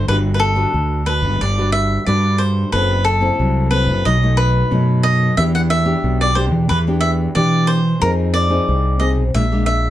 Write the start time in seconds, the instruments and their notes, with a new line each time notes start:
0.08 fingered electric bass G1, nylon-string guitar G3 D4 F#4 B4, cavaquinho B4
0.34 cavaquinho B4
0.40 cavaquinho A4
0.55 nylon-string guitar D4 F#4 B4
0.74 fingered electric bass D2, nylon-string guitar D3
1.06 nylon-string guitar D4 F#4 B4, cavaquinho B4
1.22 fingered electric bass G1
1.40 fingered electric bass G1, nylon-string guitar G3, cavaquinho D5
1.58 nylon-string guitar D4 F#4 B4
1.72 cavaquinho E5
2.06 fingered electric bass G2, nylon-string guitar D3 D4 F#4 B4, cavaquinho D5
2.38 cavaquinho C5
2.72 fingered electric bass F#1, nylon-string guitar F#3 C4 E4 A4, cavaquinho B4
3.05 cavaquinho A4
3.21 nylon-string guitar C4 E4 A4
3.39 fingered electric bass C2, nylon-string guitar F#3
3.71 nylon-string guitar C4 E4 A4, cavaquinho B4
3.86 fingered electric bass F#1
4.05 fingered electric bass B1, nylon-string guitar B2 F#3 A3 D#4, cavaquinho D#5
4.23 nylon-string guitar F#3 A3 D#4
4.37 cavaquinho B4
4.71 nylon-string guitar F#2 F#3 A3 D#4, fingered electric bass B2
5.03 cavaquinho D#5
5.37 fingered electric bass E2, nylon-string guitar E3 B3 D4 G4, cavaquinho E5
5.55 cavaquinho F#5
5.70 cavaquinho E5
5.85 nylon-string guitar B3 D4 G4
6.04 fingered electric bass B1, nylon-string guitar B2
6.21 cavaquinho D5
6.35 nylon-string guitar D4 G4, cavaquinho C5
6.51 fingered electric bass E2
6.69 fingered electric bass E2, nylon-string guitar E3, cavaquinho B4
6.87 nylon-string guitar B3 D4 G4
7.01 cavaquinho E5
7.35 nylon-string guitar B2 B3 D4 G4, fingered electric bass E3, cavaquinho D5
7.67 cavaquinho C5
8.01 fingered electric bass F2, nylon-string guitar F3 C4 D#4 G#4, cavaquinho A#4
8.34 cavaquinho D5
8.50 nylon-string guitar C4 D#4 G#4
8.68 fingered electric bass C2, nylon-string guitar C3
9.00 nylon-string guitar C4 D#4 G#4, cavaquinho D#5
9.15 fingered electric bass B1
9.34 fingered electric bass A#1, nylon-string guitar A#2 G#3 D4 F4, cavaquinho E5
9.52 nylon-string guitar G#3 D4 F4
9.66 cavaquinho E5